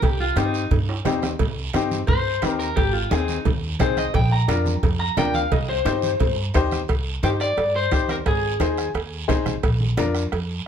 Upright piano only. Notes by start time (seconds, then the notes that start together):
0.36 C4 D#4 G4
1.05 C4 D#4 G4
1.74 C4 D#4 G4
2.42 C4 D#4 G4
3.11 C4 D#4 G#4
3.80 C4 D#4 G#4
4.48 D4 F4 A#4
5.17 D4 F4 A#4
5.85 D#4 G4 C5
6.55 D#4 G4 C5
7.23 D#4 G4 C5
7.91 D#4 G4 C5
8.60 D#4 G#4 C5
9.28 D#4 G#4 C5
9.97 D4 F4 A#4